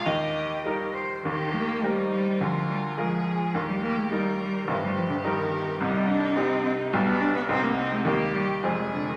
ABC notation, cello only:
X:1
M:2/4
L:1/16
Q:1/4=106
K:Eb
V:1 name="Cello" clef=bass
G4 B2 c2 | E,2 B,2 G,2 G,2 | F,2 G,2 F,4 | E, G, B, A, G,2 G,2 |
E, G, F, D, E,4 | [K:Cm] G,2 D2 C2 C2 | G, =B, D B, C _B, C A, | B,2 G,2 F,2 D, E, |]